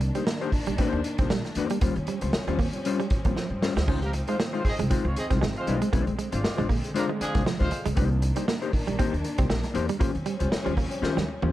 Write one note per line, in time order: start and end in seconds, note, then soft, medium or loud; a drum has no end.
0.00 1.80 D#3 medium
0.00 1.80 A#3 medium
0.00 1.80 D4 medium
0.00 muted clean electric guitar stroke soft
0.00 muted hollow-body jazz guitar stroke soft
0.00 closed hi-hat medium
0.15 0.23 G3 medium
0.15 0.25 A#3 medium
0.15 0.25 D#4 medium
0.15 0.25 G4 medium
0.15 0.24 C5 medium
0.15 closed hi-hat soft
0.27 0.37 A#3 medium
0.27 snare loud
0.41 0.52 A#3 medium
0.41 0.52 D#4 medium
0.41 0.53 G4 loud
0.41 0.53 C5 loud
0.41 muted clean electric guitar stroke soft
0.41 closed hi-hat soft
0.52 muted upright bass stroke soft
0.52 muted hollow-body jazz guitar stroke medium
0.52 kick medium
0.52 open hi-hat medium
0.66 0.76 A#1 medium
0.66 0.75 G3 medium
0.66 muted hollow-body jazz guitar stroke medium
0.66 closed hi-hat medium
0.78 1.00 A#3 medium
0.78 0.88 C4 medium
0.78 1.00 D#4 medium
0.78 1.01 G4 medium
0.78 1.01 C5 loud
0.78 kick medium
0.78 closed hi-hat medium
0.93 1.02 D#2 medium
0.93 muted clean electric guitar stroke medium
1.04 muted hollow-body jazz guitar stroke soft
1.04 closed hi-hat medium
1.18 1.28 C2 medium
1.18 1.29 A#3 medium
1.18 1.27 C4 medium
1.18 1.29 D#4 medium
1.18 1.29 G4 medium
1.18 1.28 C5 medium
1.18 kick loud
1.18 closed hi-hat medium
1.30 1.42 A#1 medium
1.30 1.40 G3 medium
1.30 muted hollow-body jazz guitar stroke medium
1.30 snare loud
1.44 muted clean electric guitar stroke soft
1.44 muted hollow-body jazz guitar stroke soft
1.44 snare soft
1.44 closed hi-hat soft
1.55 1.67 E2 medium
1.55 1.77 A#3 medium
1.55 1.71 D#4 medium
1.55 1.70 G4 medium
1.55 1.69 C5 loud
1.55 closed hi-hat medium
1.70 1.78 G3 medium
1.70 muted hollow-body jazz guitar stroke medium
1.70 closed hi-hat medium
1.81 1.93 D#2 medium
1.81 5.89 F3 medium
1.81 1.96 G3 medium
1.81 3.86 G3 medium
1.81 1.92 A#3 medium
1.81 7.94 C4 medium
1.81 1.96 C#4 medium
1.81 3.86 C#4 medium
1.81 1.97 F4 loud
1.81 1.96 C5 medium
1.81 kick loud
1.81 closed hi-hat loud
1.96 2.05 D#2 loud
1.96 muted hollow-body jazz guitar stroke medium
1.96 closed hi-hat soft
2.07 2.18 G3 medium
2.07 muted hollow-body jazz guitar stroke soft
2.07 closed hi-hat medium
2.21 2.31 C#2 loud
2.21 2.32 G3 medium
2.21 2.31 C#4 medium
2.21 2.31 F4 medium
2.21 2.31 C5 medium
2.21 muted clean electric guitar stroke soft
2.21 closed hi-hat medium
2.33 muted clean electric guitar stroke soft
2.33 muted upright bass stroke medium
2.33 muted hollow-body jazz guitar stroke medium
2.33 snare loud
2.47 2.68 D#2 medium
2.47 2.56 G3 medium
2.47 2.59 G3 medium
2.47 2.60 C#4 medium
2.47 2.60 F4 loud
2.47 2.59 C5 medium
2.47 closed hi-hat soft
2.59 2.69 A#3 medium
2.59 muted hollow-body jazz guitar stroke soft
2.59 kick medium
2.59 open hi-hat medium
2.73 muted hollow-body jazz guitar stroke soft
2.73 closed hi-hat medium
2.85 3.00 G3 medium
2.85 3.00 C#4 loud
2.85 3.00 F4 loud
2.85 3.00 C5 loud
2.85 closed hi-hat medium
3.00 3.07 G3 medium
3.00 closed hi-hat soft
3.10 muted upright bass stroke soft
3.10 muted clean electric guitar stroke soft
3.10 muted hollow-body jazz guitar stroke soft
3.10 kick loud
3.10 closed hi-hat medium
3.25 3.34 F2 medium
3.25 3.35 G3 medium
3.25 3.33 A#3 medium
3.25 3.35 C#4 soft
3.25 3.34 F4 medium
3.25 3.34 C5 medium
3.25 kick medium
3.25 closed hi-hat medium
3.36 3.47 F3 medium
3.36 muted upright bass stroke soft
3.36 snare medium
3.50 3.60 G2 loud
3.50 muted hollow-body jazz guitar stroke soft
3.62 3.76 G3 medium
3.62 3.76 C#4 medium
3.62 3.76 F4 medium
3.62 3.75 C5 medium
3.62 muted clean electric guitar stroke soft
3.62 snare loud
3.76 3.86 D2 loud
3.76 3.85 G3 medium
3.76 muted hollow-body jazz guitar stroke soft
3.76 snare loud
3.88 4.20 C#2 loud
3.88 5.91 D#3 medium
3.88 4.02 G#3 medium
3.88 3.98 C#4 loud
3.88 4.02 D#4 medium
3.88 4.02 F4 medium
3.88 4.01 C5 medium
3.88 kick loud
3.88 splash medium
4.02 4.09 A#3 medium
4.02 4.09 G4 medium
4.02 4.09 A#4 medium
4.02 muted hollow-body jazz guitar stroke soft
4.02 closed hi-hat soft
4.13 muted hollow-body jazz guitar stroke soft
4.13 muted clean electric guitar stroke soft
4.13 closed hi-hat medium
4.27 4.35 G#3 medium
4.27 4.36 G#3 medium
4.27 4.38 G#3 medium
4.27 4.38 D#4 medium
4.27 4.35 F4 medium
4.27 4.37 F4 medium
4.27 4.37 C5 medium
4.27 4.35 C5 medium
4.27 closed hi-hat medium
4.40 4.49 A#3 medium
4.40 snare loud
4.53 4.63 G#3 medium
4.53 4.64 D#4 medium
4.53 4.64 F4 medium
4.53 4.63 F4 medium
4.53 4.64 C5 medium
4.53 4.63 C5 medium
4.53 muted clean electric guitar stroke soft
4.53 closed hi-hat soft
4.65 4.74 C4 medium
4.65 4.74 G#4 medium
4.65 4.74 D#5 medium
4.65 muted upright bass stroke medium
4.65 kick medium
4.65 open hi-hat medium
4.79 4.88 C2 loud
4.79 4.87 G#3 medium
4.79 muted hollow-body jazz guitar stroke medium
4.79 closed hi-hat medium
4.90 5.05 G#3 medium
4.90 5.00 C4 medium
4.90 5.05 D#4 medium
4.90 5.05 F4 medium
4.90 5.05 C5 medium
4.90 kick loud
4.90 closed hi-hat medium
5.05 5.14 C#2 loud
5.05 5.14 G#3 medium
5.05 5.14 F4 medium
5.05 5.14 C#5 medium
5.05 muted clean electric guitar stroke soft
5.16 5.25 C4 medium
5.16 5.25 G#4 medium
5.16 5.25 D#5 medium
5.16 muted hollow-body jazz guitar stroke soft
5.16 closed hi-hat medium
5.30 5.40 C2 medium
5.30 5.40 G#3 medium
5.30 5.38 C4 medium
5.30 5.40 D#4 medium
5.30 5.40 F4 medium
5.30 5.39 C5 medium
5.30 kick loud
5.30 snare soft
5.30 closed hi-hat medium
5.41 5.53 G#1 medium
5.41 5.51 G#3 medium
5.41 muted hollow-body jazz guitar stroke soft
5.41 snare loud
5.56 5.77 G#3 medium
5.56 5.77 F4 medium
5.56 5.77 C5 medium
5.56 muted hollow-body jazz guitar stroke soft
5.56 muted clean electric guitar stroke soft
5.56 closed hi-hat soft
5.67 5.79 B1 medium
5.67 5.88 G#3 medium
5.67 5.82 D#4 medium
5.67 5.81 F4 loud
5.67 5.81 C5 medium
5.67 closed hi-hat medium
5.82 5.90 G#3 medium
5.82 muted hollow-body jazz guitar stroke soft
5.82 closed hi-hat medium
5.93 6.05 A#1 loud
5.93 7.96 D3 medium
5.93 6.14 G#3 loud
5.93 7.96 G#3 medium
5.93 6.03 A#3 medium
5.93 6.07 D4 medium
5.93 6.07 F4 loud
5.93 6.06 C5 medium
5.93 kick loud
5.93 closed hi-hat loud
6.07 6.16 A#1 medium
6.07 muted hollow-body jazz guitar stroke medium
6.07 closed hi-hat soft
6.18 6.28 G#3 medium
6.18 muted hollow-body jazz guitar stroke soft
6.18 closed hi-hat medium
6.32 6.42 G#1 loud
6.32 6.68 G#3 medium
6.32 6.42 G#3 soft
6.32 6.42 D4 medium
6.32 6.42 F4 medium
6.32 6.68 F4 medium
6.32 6.41 C5 medium
6.32 6.68 D5 medium
6.32 muted clean electric guitar stroke medium
6.32 closed hi-hat medium
6.44 muted clean electric guitar stroke soft
6.44 muted upright bass stroke medium
6.44 snare loud
6.57 6.79 A#1 loud
6.57 6.66 G#3 medium
6.57 6.68 G#3 medium
6.57 6.69 D4 medium
6.57 6.69 F4 medium
6.57 6.69 C5 medium
6.57 closed hi-hat soft
6.69 6.79 A#3 medium
6.69 kick medium
6.69 open hi-hat medium
6.84 muted hollow-body jazz guitar stroke soft
6.84 closed hi-hat medium
6.94 7.04 F3 medium
6.94 7.09 G#3 loud
6.94 7.09 D4 loud
6.94 7.05 D4 medium
6.94 7.10 F4 loud
6.94 7.04 A#4 loud
6.94 7.10 C5 loud
6.94 closed hi-hat medium
7.09 7.17 G#3 medium
7.20 7.42 F3 loud
7.20 7.41 D4 loud
7.20 7.42 G#4 loud
7.20 muted hollow-body jazz guitar stroke soft
7.20 muted upright bass stroke medium
7.20 muted clean electric guitar stroke soft
7.20 closed hi-hat medium
7.34 7.44 C2 medium
7.34 7.44 G#3 medium
7.34 7.43 A#3 medium
7.34 7.44 D4 medium
7.34 7.44 F4 medium
7.34 7.44 C5 medium
7.34 kick loud
7.34 snare soft
7.34 closed hi-hat medium
7.46 7.56 F3 medium
7.46 muted hollow-body jazz guitar stroke soft
7.46 muted upright bass stroke soft
7.46 snare medium
7.59 7.70 D2 loud
7.59 7.81 G#3 medium
7.59 7.70 G#3 medium
7.59 7.70 D4 medium
7.59 7.70 F4 medium
7.59 7.81 F4 medium
7.59 7.71 C5 medium
7.59 7.81 C5 loud
7.59 kick medium
7.59 snare soft
7.59 closed hi-hat soft
7.71 muted hollow-body jazz guitar stroke soft
7.71 muted clean electric guitar stroke soft
7.71 closed hi-hat medium
7.84 7.95 C#2 loud
7.84 7.93 G#3 medium
7.84 muted hollow-body jazz guitar stroke soft
7.84 closed hi-hat medium
7.95 8.29 C2 loud
7.95 9.99 D#3 medium
7.95 8.17 A#3 medium
7.95 9.99 A#3 medium
7.95 8.07 C4 medium
7.95 9.99 D4 medium
7.95 8.11 D#4 medium
7.95 8.11 G4 medium
7.95 8.10 C5 medium
7.95 kick loud
7.95 closed hi-hat loud
8.11 muted hollow-body jazz guitar stroke soft
8.22 muted hollow-body jazz guitar stroke soft
8.22 muted clean electric guitar stroke soft
8.22 closed hi-hat medium
8.36 8.45 G3 medium
8.36 8.46 A#3 medium
8.36 8.46 D#4 medium
8.36 8.46 G4 medium
8.36 8.45 C5 medium
8.36 closed hi-hat medium
8.48 8.58 A#3 medium
8.48 muted hollow-body jazz guitar stroke soft
8.48 snare loud
8.62 8.72 A#3 medium
8.62 8.73 D#4 medium
8.62 8.73 G4 medium
8.62 8.73 C5 medium
8.62 muted clean electric guitar stroke soft
8.62 closed hi-hat soft
8.73 muted upright bass stroke soft
8.73 muted hollow-body jazz guitar stroke soft
8.73 kick medium
8.73 open hi-hat medium
8.87 8.97 A#1 medium
8.87 8.95 G3 medium
8.87 muted hollow-body jazz guitar stroke soft
8.87 closed hi-hat medium
8.99 9.13 A#3 medium
8.99 9.09 C4 medium
8.99 9.14 D#4 medium
8.99 9.14 G4 medium
8.99 9.14 C5 medium
8.99 kick loud
8.99 closed hi-hat medium
9.13 9.22 D#2 medium
9.13 muted clean electric guitar stroke soft
9.13 closed hi-hat soft
9.24 muted hollow-body jazz guitar stroke soft
9.24 closed hi-hat medium
9.38 9.48 C2 loud
9.38 9.48 A#3 soft
9.38 9.46 C4 medium
9.38 9.48 D#4 medium
9.38 9.48 G4 medium
9.38 9.47 C5 medium
9.38 kick loud
9.38 closed hi-hat medium
9.50 9.61 A#1 medium
9.50 9.60 G3 medium
9.50 muted hollow-body jazz guitar stroke soft
9.50 snare loud
9.63 muted hollow-body jazz guitar stroke soft
9.63 muted clean electric guitar stroke soft
9.63 snare soft
9.63 closed hi-hat soft
9.74 9.87 E2 loud
9.74 9.89 A#3 medium
9.74 9.89 D#4 medium
9.74 9.88 G4 medium
9.74 9.87 C5 loud
9.74 closed hi-hat medium
9.89 9.97 G3 medium
9.89 muted hollow-body jazz guitar stroke medium
9.89 closed hi-hat medium
9.99 10.12 D#2 medium
9.99 11.52 F3 medium
9.99 11.52 G3 medium
9.99 10.10 A#3 medium
9.99 11.52 C4 medium
9.99 10.14 C#4 medium
9.99 11.52 C#4 medium
9.99 10.14 F4 medium
9.99 10.13 G4 medium
9.99 10.13 C5 medium
9.99 kick loud
9.99 closed hi-hat loud
10.14 10.24 D#2 medium
10.14 muted hollow-body jazz guitar stroke soft
10.14 closed hi-hat soft
10.26 10.36 G3 medium
10.26 muted hollow-body jazz guitar stroke soft
10.26 closed hi-hat medium
10.39 10.50 C#2 medium
10.39 10.50 C#4 medium
10.39 10.50 F4 medium
10.39 10.49 G4 medium
10.39 10.49 C5 medium
10.39 muted clean electric guitar stroke soft
10.39 closed hi-hat medium
10.51 muted hollow-body jazz guitar stroke medium
10.51 muted clean electric guitar stroke soft
10.51 muted upright bass stroke medium
10.51 snare loud
10.65 10.87 D#2 medium
10.65 10.74 G3 medium
10.65 10.75 C#4 medium
10.65 10.75 F4 medium
10.65 10.76 G4 medium
10.65 10.76 C5 medium
10.65 closed hi-hat soft
10.76 10.87 A#3 medium
10.76 muted hollow-body jazz guitar stroke soft
10.76 kick medium
10.76 open hi-hat medium
10.91 muted hollow-body jazz guitar stroke soft
10.91 closed hi-hat medium
11.02 11.14 D#3 loud
11.02 11.17 C#4 loud
11.02 11.17 F4 loud
11.02 11.17 G4 medium
11.02 11.17 C5 loud
11.02 snare medium
11.17 11.26 D#2 medium
11.17 11.25 G3 medium
11.17 snare medium
11.28 muted hollow-body jazz guitar stroke soft
11.28 muted clean electric guitar stroke soft
11.42 11.51 D#2 medium
11.42 11.50 A#3 medium
11.42 11.52 C#4 medium
11.42 11.52 F4 medium
11.42 11.51 G4 medium
11.42 11.51 C5 medium
11.42 high tom medium